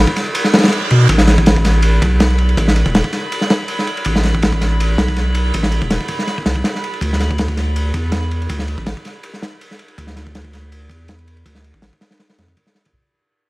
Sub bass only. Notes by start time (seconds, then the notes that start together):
0.91 B2
1.09 A1
2.02 B1
2.57 A1
2.86 E1
4.06 A1
4.98 B1
5.55 A1
5.82 E1
6.46 C2
7.01 D2
7.94 E2
8.50 D2
8.78 A1
9.98 D2
10.90 E2
11.46 D2
11.74 A1
12.39 F2